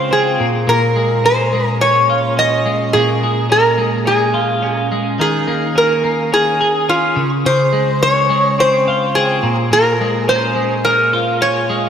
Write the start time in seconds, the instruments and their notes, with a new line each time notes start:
Already playing: clean electric guitar C#3 G#3 F4, resonator guitar played with a steel bar C5
0.11 clean electric guitar C4, resonator guitar played with a steel bar G#4
0.40 clean electric guitar A#2
0.67 clean electric guitar A#2, resonator guitar played with a steel bar A#4
0.96 clean electric guitar G#3
1.24 clean electric guitar C#4, resonator guitar played with a steel bar C5
1.53 clean electric guitar G#3
1.66 resonator guitar played with a steel bar A#4
1.81 clean electric guitar C#4, resonator guitar played with a steel bar C#5
2.10 clean electric guitar F4
2.37 clean electric guitar C#4, resonator guitar played with a steel bar D#5
2.66 clean electric guitar G#3
2.93 clean electric guitar A#2, resonator guitar played with a steel bar G#4
3.23 clean electric guitar G#3
3.50 clean electric guitar C#4, resonator guitar played with a steel bar A#4
3.78 clean electric guitar G#3
4.06 clean electric guitar C#4, resonator guitar played with a steel bar G#4
4.34 clean electric guitar F4
4.62 clean electric guitar C#4
4.92 clean electric guitar G#3
5.19 clean electric guitar D#3, resonator guitar played with a steel bar G#4
5.47 clean electric guitar A#3
5.76 clean electric guitar C#4, resonator guitar played with a steel bar A#4
6.04 clean electric guitar A#3
6.32 clean electric guitar C#4, resonator guitar played with a steel bar G#4
6.61 clean electric guitar G#4
6.89 clean electric guitar C#4, resonator guitar played with a steel bar F4
7.16 clean electric guitar C#3
7.46 clean electric guitar C#3, resonator guitar played with a steel bar C5
7.73 clean electric guitar G#3
8.03 resonator guitar played with a steel bar C#5
8.30 clean electric guitar G#3
8.59 clean electric guitar C4, resonator guitar played with a steel bar C5
8.88 clean electric guitar F4
9.15 clean electric guitar C4, resonator guitar played with a steel bar G#4
9.43 clean electric guitar A#2
9.72 clean electric guitar A#2, resonator guitar played with a steel bar A#4
10.01 clean electric guitar G#3
10.28 clean electric guitar C#4, resonator guitar played with a steel bar C5
10.56 clean electric guitar G#3
10.85 clean electric guitar C#4, resonator guitar played with a steel bar A#4
11.13 clean electric guitar F4
11.41 clean electric guitar C#4, resonator guitar played with a steel bar C#5
11.69 clean electric guitar G#3